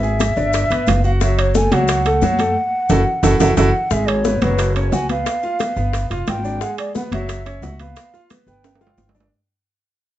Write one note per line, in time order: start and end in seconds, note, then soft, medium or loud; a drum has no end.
0.00 0.31 G#1 medium
0.00 0.31 G#4 medium
0.00 0.90 E5 loud
0.00 0.31 G#5 medium
0.00 high bongo soft
0.00 high conga soft
0.00 maracas soft
0.20 high bongo medium
0.20 high conga medium
0.20 high timbale medium
0.20 maracas medium
0.36 0.68 G1 medium
0.36 0.64 D4 medium
0.36 0.65 D5 medium
0.36 high bongo soft
0.36 high conga soft
0.36 maracas soft
0.53 high bongo medium
0.53 high conga soft
0.53 high timbale medium
0.53 maracas medium
0.70 0.86 G1 medium
0.70 0.98 B3 medium
0.70 0.98 B4 medium
0.70 high bongo soft
0.70 high conga soft
0.70 high timbale medium
0.70 maracas soft
0.87 1.66 F#1 medium
0.87 1.05 F5 medium
0.87 high bongo soft
0.87 low bongo medium
0.87 high conga medium
0.87 high timbale medium
0.87 low timbale medium
0.87 maracas medium
1.04 1.18 F#4 medium
1.04 1.12 F5 medium
1.04 1.18 F#5 medium
1.04 maracas soft
1.21 1.49 F#3 medium
1.21 1.49 F#4 medium
1.21 1.40 E5 medium
1.21 high bongo medium
1.21 high conga soft
1.21 maracas medium
1.38 1.57 C#5 medium
1.38 high bongo soft
1.38 high conga soft
1.38 high timbale medium
1.38 maracas soft
1.55 1.69 A3 medium
1.55 1.69 A4 medium
1.55 1.75 G#5 medium
1.55 high bongo medium
1.55 high conga medium
1.55 maracas medium
1.71 2.19 C#2 medium
1.71 2.00 F#3 medium
1.71 2.00 F#4 medium
1.71 3.58 F#5 medium
1.71 high bongo soft
1.71 high conga medium
1.71 high timbale medium
1.71 maracas soft
1.88 high bongo medium
1.88 high conga soft
1.88 high timbale medium
1.88 maracas medium
2.05 2.19 A3 medium
2.05 2.20 A4 medium
2.05 high bongo soft
2.05 high conga soft
2.05 high timbale medium
2.05 maracas soft
2.22 2.53 F#2 medium
2.22 2.36 F#3 medium
2.22 2.37 F#4 medium
2.22 high bongo soft
2.22 low bongo medium
2.22 high conga medium
2.22 maracas medium
2.39 2.53 A3 medium
2.39 2.53 A4 medium
2.39 high conga medium
2.39 high timbale medium
2.39 maracas soft
2.89 3.02 F#1 medium
2.89 3.01 E4 medium
2.89 3.01 F#4 medium
2.89 3.01 A4 medium
2.89 low bongo loud
2.89 low conga loud
2.89 high timbale medium
2.89 maracas loud
3.23 3.36 F#1 medium
3.23 3.34 E4 medium
3.23 3.34 F#4 medium
3.23 3.34 A4 loud
3.23 low bongo medium
3.23 low conga medium
3.23 high timbale medium
3.23 maracas loud
3.40 3.53 F#1 medium
3.40 3.51 E4 loud
3.40 3.51 F#4 medium
3.40 3.51 A4 medium
3.40 low bongo loud
3.40 low conga medium
3.40 high timbale loud
3.40 maracas loud
3.57 3.70 F#1 medium
3.57 3.68 E4 loud
3.57 3.68 F#4 loud
3.57 3.68 A4 medium
3.57 3.93 F#5 medium
3.57 low bongo loud
3.57 low conga medium
3.57 high timbale loud
3.57 maracas medium
3.91 4.38 G#1 medium
3.91 4.19 G#3 medium
3.91 4.19 G#4 medium
3.91 4.10 E5 loud
3.91 high bongo medium
3.91 high conga soft
3.91 maracas medium
4.08 4.44 C#5 medium
4.08 high bongo soft
4.08 high conga soft
4.08 high timbale medium
4.08 maracas soft
4.25 4.39 B3 medium
4.25 4.39 B4 medium
4.25 high bongo medium
4.25 high conga medium
4.25 maracas medium
4.41 4.89 F#1 medium
4.41 4.70 F#3 medium
4.41 4.70 F#4 medium
4.41 4.76 B4 medium
4.41 high bongo soft
4.41 high conga medium
4.41 high timbale medium
4.41 maracas soft
4.59 high bongo medium
4.59 high timbale medium
4.59 maracas medium
4.75 4.89 C#4 medium
4.75 4.90 C#5 medium
4.75 4.94 C#5 medium
4.75 high bongo soft
4.75 high conga soft
4.75 high timbale medium
4.75 maracas soft
4.92 5.22 C#2 medium
4.92 5.06 F#4 medium
4.92 5.06 F#5 medium
4.92 5.10 G#5 loud
4.92 high bongo soft
4.92 low bongo medium
4.92 high conga medium
4.92 low timbale medium
4.92 maracas medium
5.09 5.37 B3 medium
5.09 5.37 B4 medium
5.09 6.07 F5 loud
5.09 high conga medium
5.09 high timbale medium
5.09 maracas soft
5.26 high bongo medium
5.26 high conga soft
5.26 high timbale medium
5.26 maracas medium
5.43 5.57 F4 medium
5.43 5.57 F5 medium
5.43 high bongo soft
5.43 high conga soft
5.43 maracas soft
5.60 5.74 B3 medium
5.60 5.74 B4 medium
5.60 high bongo medium
5.60 high conga medium
5.60 high timbale medium
5.60 maracas medium
5.76 6.08 G1 medium
5.76 6.05 B3 medium
5.76 6.05 B4 medium
5.76 high bongo soft
5.76 high conga soft
5.76 maracas soft
5.93 high bongo medium
5.93 high conga soft
5.93 high timbale medium
5.93 maracas medium
6.10 6.26 F1 medium
6.10 6.38 F4 medium
6.10 6.38 F5 medium
6.10 high bongo soft
6.10 high conga soft
6.10 high timbale medium
6.10 maracas soft
6.27 6.57 G#1 medium
6.27 6.64 G5 loud
6.27 high bongo soft
6.27 low bongo medium
6.27 high conga medium
6.27 high timbale medium
6.27 low timbale medium
6.27 maracas medium
6.44 6.58 D4 medium
6.44 6.59 D5 medium
6.44 maracas soft
6.61 6.89 G#3 medium
6.61 6.89 G#4 medium
6.61 6.78 F#5 loud
6.61 high bongo medium
6.61 high conga soft
6.61 maracas medium
6.78 6.94 D5 medium
6.78 high bongo soft
6.78 high conga soft
6.78 high timbale medium
6.78 maracas soft
6.95 7.09 B3 medium
6.95 7.09 B4 medium
6.95 7.02 F#5 medium
6.95 high bongo medium
6.95 high conga medium
6.95 maracas medium
7.11 7.59 F#1 medium
7.11 7.40 F#3 medium
7.11 7.40 F#4 medium
7.11 7.82 E5 medium
7.11 high bongo soft
7.11 high conga medium
7.11 high timbale medium
7.11 maracas soft
7.29 high bongo medium
7.29 high conga soft
7.29 high timbale medium
7.29 maracas medium
7.46 7.60 C#4 medium
7.46 7.60 C#5 medium
7.46 high bongo soft
7.46 high conga soft
7.46 high timbale medium
7.46 maracas soft
7.62 7.92 C#2 medium
7.62 7.76 F#4 medium
7.62 7.76 F#5 medium
7.62 high bongo soft
7.62 low bongo medium
7.62 high conga medium
7.62 low timbale medium
7.62 maracas medium
7.79 8.07 B3 medium
7.79 8.07 B4 medium
7.79 8.21 F5 medium
7.79 high conga medium
7.79 high timbale medium
7.79 maracas soft
7.96 high bongo medium
7.96 high conga soft
7.96 high timbale medium
7.96 maracas medium
8.14 8.27 F4 medium
8.14 8.27 F5 medium
8.14 high bongo soft
8.14 high conga soft
8.14 maracas soft
8.30 8.44 B3 medium
8.30 8.44 B4 medium
8.30 high bongo medium
8.30 high conga medium
8.30 high timbale medium
8.30 maracas medium
8.47 8.94 G1 medium
8.47 8.75 B3 medium
8.47 8.75 B4 medium
8.47 9.11 G5 medium
8.47 high bongo soft
8.47 high conga soft
8.47 maracas soft
8.64 high bongo medium
8.64 high conga soft
8.64 high timbale medium
8.64 maracas medium
8.75 high timbale medium
8.81 9.09 F4 medium
8.81 9.09 F5 medium
8.81 high bongo medium
8.81 high conga soft
8.81 maracas soft
8.87 low timbale medium
8.97 9.27 G1 medium
8.97 high conga medium
8.97 low timbale medium
8.97 maracas medium
9.09 low timbale medium
9.15 9.29 D4 medium
9.15 9.29 D5 medium
9.15 low bongo medium
9.15 maracas soft
9.20 low timbale medium